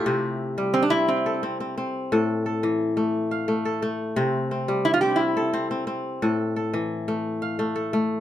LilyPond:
<<
  \new Staff \with { instrumentName = "Resonator guitar played with a steel bar" } { \time 12/8 \key c \major \tempo 4. = 117 r2 c'16 d'16 e'8 c'4 r2 | r1. | r2 e'16 f'16 g'8 e'4 r2 | r1. | }
  \new Staff \with { instrumentName = "Kora" } { \time 12/8 \key c \major << { c'4. r2 a'4 c'4. | a'4 a'4. r4 f''4 a'4. | c'4 c'4. r4 a'4 c'4. | a'4 a'4. r4 f''4 a'4. | } \\ { e'16 r1 r4. r16 | r1. | r1. | r1. | } >> }
  \new Staff \with { instrumentName = "Kora" } { \time 12/8 \key c \major c4 r8 g4 c'4 r8 c'4 c'4 | a,4 r8 e4 a4 r8 a4 a4 | c4 r8 g4 c'4 r8 c'4 c'4 | a,4 r8 e4 a4 r8 a4 a4 | }
>>